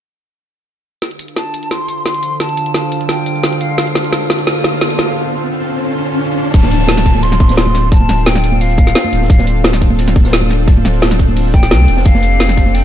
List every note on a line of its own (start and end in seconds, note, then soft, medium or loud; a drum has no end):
1.02 6.50 D3 medium
1.02 6.50 F4 medium
1.02 6.50 A4 medium
1.02 6.50 C5 medium
1.02 6.50 F5 medium
1.02 snare soft
1.02 closed hi-hat medium
1.02 riser medium
1.11 closed hi-hat soft
1.19 closed hi-hat medium
1.19 tambourine medium
1.28 closed hi-hat soft
1.36 1.73 A5 loud
1.36 snare soft
1.36 closed hi-hat medium
1.54 closed hi-hat medium
1.54 tambourine medium
1.63 closed hi-hat soft
1.71 2.05 C6 loud
1.71 snare soft
1.71 closed hi-hat medium
1.88 closed hi-hat medium
1.88 tambourine medium
2.06 2.38 C6 loud
2.06 snare medium
2.06 closed hi-hat medium
2.14 closed hi-hat soft
2.23 closed hi-hat medium
2.23 tambourine medium
2.40 2.72 A5 loud
2.40 snare medium
2.40 closed hi-hat medium
2.49 closed hi-hat soft
2.57 closed hi-hat medium
2.57 tambourine medium
2.66 closed hi-hat soft
2.74 3.07 A5 loud
2.74 snare medium
2.74 closed hi-hat medium
2.92 closed hi-hat medium
2.92 tambourine medium
3.01 closed hi-hat soft
3.09 3.62 G5 medium
3.09 snare medium
3.09 closed hi-hat medium
3.26 closed hi-hat medium
3.26 tambourine medium
3.35 tambourine soft
3.44 snare medium
3.44 closed hi-hat medium
3.53 closed hi-hat soft
3.61 3.95 F5 medium
3.61 closed hi-hat medium
3.61 tambourine medium
3.78 snare medium
3.78 closed hi-hat medium
3.87 closed hi-hat soft
3.95 snare medium
3.95 closed hi-hat medium
3.95 tambourine medium
4.04 closed hi-hat soft
4.13 snare medium
4.13 closed hi-hat medium
4.30 snare medium
4.30 closed hi-hat medium
4.30 tambourine medium
4.39 closed hi-hat soft
4.47 snare medium
4.47 closed hi-hat medium
4.64 snare medium
4.64 closed hi-hat medium
4.64 tambourine medium
4.81 snare medium
4.81 closed hi-hat medium
4.90 closed hi-hat soft
4.99 snare medium
4.99 closed hi-hat medium
4.99 tambourine medium
6.54 7.91 D1 loud
6.54 12.84 C4 medium
6.54 12.84 D4 medium
6.54 12.02 F4 medium
6.54 12.84 A4 medium
6.54 7.24 A5 loud
6.54 kick loud
6.54 closed hi-hat medium
6.54 crash loud
6.54 tambourine medium
6.54 downlifter medium
6.63 snare soft
6.63 high conga medium
6.71 closed hi-hat medium
6.71 tambourine soft
6.88 snare loud
6.88 closed hi-hat medium
6.88 closed hi-hat loud
6.88 tambourine soft
6.88 high conga medium
6.97 snare medium
6.97 tambourine medium
7.05 kick medium
7.05 closed hi-hat medium
7.05 tambourine soft
7.15 high conga medium
7.23 7.57 C6 loud
7.23 closed hi-hat medium
7.23 tambourine soft
7.32 snare soft
7.32 closed hi-hat soft
7.40 kick loud
7.40 closed hi-hat medium
7.40 high conga medium
7.49 snare medium
7.49 tambourine medium
7.57 7.90 C6 loud
7.57 snare loud
7.57 closed hi-hat loud
7.57 closed hi-hat medium
7.57 tambourine soft
7.67 high conga medium
7.75 snare soft
7.75 closed hi-hat medium
7.75 tambourine soft
7.92 8.07 D1 loud
7.92 8.28 A5 loud
7.92 kick loud
7.92 closed hi-hat medium
7.92 tambourine soft
8.01 high conga medium
8.09 8.94 D1 loud
8.09 snare medium
8.09 closed hi-hat medium
8.09 tambourine soft
8.18 closed hi-hat soft
8.26 8.63 G5 loud
8.26 snare loud
8.26 closed hi-hat loud
8.26 closed hi-hat medium
8.26 tambourine soft
8.26 high conga medium
8.35 snare medium
8.35 tambourine medium
8.44 closed hi-hat medium
8.44 tambourine soft
8.52 high conga loud
8.61 9.29 F5 medium
8.61 closed hi-hat loud
8.61 open hi-hat medium
8.61 tambourine soft
8.77 kick loud
8.77 closed hi-hat medium
8.77 tambourine soft
8.77 high conga medium
8.87 snare soft
8.87 tambourine medium
8.95 snare loud
8.95 closed hi-hat loud
8.95 closed hi-hat medium
8.95 tambourine soft
9.04 high conga medium
9.12 9.28 D1 medium
9.12 closed hi-hat medium
9.12 tambourine soft
9.22 snare soft
9.30 10.66 D1 loud
9.30 9.62 F5 medium
9.30 kick loud
9.30 closed hi-hat medium
9.30 tambourine soft
9.38 snare medium
9.38 high conga medium
9.47 closed hi-hat medium
9.47 tambourine soft
9.64 snare loud
9.64 closed hi-hat medium
9.64 tambourine soft
9.64 high conga medium
9.73 snare medium
9.73 tambourine medium
9.81 kick medium
9.81 closed hi-hat medium
9.81 tambourine soft
9.90 high conga loud
9.99 closed hi-hat medium
9.99 closed hi-hat loud
9.99 tambourine soft
10.08 snare soft
10.16 kick loud
10.16 closed hi-hat medium
10.16 high conga medium
10.25 snare medium
10.25 tambourine medium
10.33 snare loud
10.33 closed hi-hat medium
10.33 tambourine soft
10.41 high conga medium
10.50 snare soft
10.50 closed hi-hat medium
10.50 tambourine soft
10.68 10.83 D1 loud
10.68 kick loud
10.68 closed hi-hat medium
10.68 tambourine medium
10.77 high conga medium
10.85 11.73 D1 medium
10.85 snare medium
10.85 closed hi-hat medium
10.85 tambourine soft
10.94 closed hi-hat soft
11.02 snare loud
11.02 closed hi-hat medium
11.02 tambourine soft
11.02 high conga medium
11.11 snare medium
11.11 tambourine medium
11.19 kick medium
11.19 closed hi-hat medium
11.19 tambourine soft
11.29 high conga medium
11.37 closed hi-hat medium
11.37 open hi-hat medium
11.37 tambourine soft
11.54 12.07 G5 loud
11.54 kick loud
11.54 closed hi-hat medium
11.54 tambourine soft
11.54 high conga medium
11.63 snare soft
11.63 tambourine medium
11.71 11.87 C2 medium
11.71 snare loud
11.71 closed hi-hat medium
11.71 tambourine soft
11.80 high conga medium
11.88 12.04 E1 loud
11.88 closed hi-hat medium
11.88 tambourine soft
11.97 snare medium
12.05 12.84 F1 loud
12.05 12.84 G4 medium
12.05 12.76 F5 loud
12.05 kick loud
12.05 closed hi-hat medium
12.05 tambourine soft
12.15 snare soft
12.15 high conga loud
12.23 closed hi-hat medium
12.23 tambourine soft
12.40 snare loud
12.40 closed hi-hat medium
12.40 tambourine soft
12.40 high conga medium
12.49 snare medium
12.49 tambourine medium
12.57 kick medium
12.57 closed hi-hat medium
12.57 tambourine soft
12.66 high conga medium
12.75 12.84 G5 loud
12.75 closed hi-hat medium
12.75 closed hi-hat loud
12.75 tambourine medium